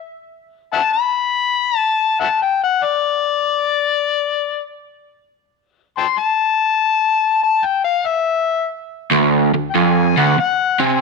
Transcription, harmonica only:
0.73 0.80 E5 medium
0.73 0.82 F#5 medium
0.73 0.92 A5 loud
0.93 1.77 B5 loud
1.77 2.16 A5 loud
2.20 2.26 E5 medium
2.20 2.28 F#5 medium
2.20 2.41 A5 loud
2.42 2.62 G5 loud
2.64 2.85 F#5 loud
2.84 4.68 D5 loud
5.98 6.05 G5 medium
5.98 6.06 A5 medium
5.98 6.20 C6 loud
6.18 7.40 A5 loud
7.43 7.66 A5 loud
7.65 7.84 G5 loud
7.84 8.08 F5 loud
8.06 8.68 E5 loud
9.70 9.78 G5 medium
9.77 10.20 G#5 medium
10.18 10.39 F#5 medium
10.40 10.82 F#5 medium
10.80 11.01 G#5 medium

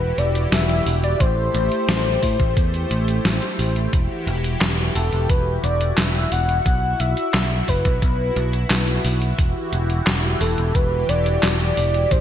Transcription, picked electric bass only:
0.00 0.11 E1 medium
0.18 0.45 E1 loud
0.52 0.80 E1 medium
0.86 1.14 E1 medium
1.20 1.48 A1 medium
1.55 1.68 A1 loud
1.89 2.16 A1 medium
2.23 2.36 A2 medium
2.40 2.53 A1 loud
2.57 2.84 E2 medium
2.91 3.18 A1 medium
3.25 3.39 A1 medium
3.59 3.86 A1 medium
3.93 4.07 E1 loud
4.27 4.55 E1 loud
4.61 4.89 E1 medium
4.95 5.09 E1 loud
5.13 5.26 E1 medium
5.29 5.57 E1 medium
5.64 5.91 E1 loud
5.98 6.25 E1 medium
6.32 6.59 E1 medium
6.66 6.93 B1 medium
7.00 7.14 B1 loud
7.34 7.61 B1 medium
7.68 7.82 F#1 medium
7.85 7.99 B1 loud
8.02 8.30 B1 loud
8.36 8.64 B1 loud
8.70 8.98 B1 medium
9.05 9.32 B1 loud
9.39 9.52 E1 loud
9.73 10.00 E1 loud
10.07 10.34 E1 medium
10.41 10.55 E1 loud
10.58 10.72 E1 medium
10.75 11.02 E1 loud
11.09 11.36 E1 loud
11.43 11.71 E1 medium
11.77 12.05 E1 medium
12.11 12.21 A1 loud

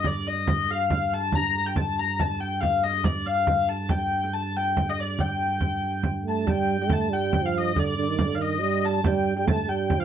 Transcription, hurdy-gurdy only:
0.06 0.27 D5 medium
0.27 0.71 D#5 medium
0.71 1.13 F5 medium
1.13 1.35 A5 medium
1.35 1.67 A#5 medium
1.67 1.77 G5 medium
1.76 1.99 A5 medium
1.99 2.20 A#5 medium
2.20 2.41 A5 medium
2.41 2.61 G5 medium
2.61 2.84 F5 medium
2.84 3.04 D#5 medium
3.04 3.26 D5 medium
3.26 3.69 F5 medium
3.69 3.90 A5 medium
3.90 4.24 G5 medium
4.24 4.34 G5 medium
4.34 4.57 A5 medium
4.57 4.90 G5 medium
4.89 5.00 D#5 medium
5.00 5.20 D5 medium
5.20 6.05 G5 medium
6.29 6.50 A5 medium
6.50 6.82 G5 medium
6.82 6.93 G5 medium
6.93 7.13 A5 medium
7.13 7.46 G5 medium
7.46 7.58 F5 medium
7.58 7.79 D#5 medium
7.79 7.99 D5 medium
7.99 8.35 D5 medium
8.35 8.42 F5 medium
8.42 8.85 D#5 medium
8.85 9.07 A5 medium
9.07 9.36 G5 medium
9.36 9.48 G5 medium
9.48 9.69 A5 medium
9.69 10.00 G5 medium
10.00 10.05 F5 medium

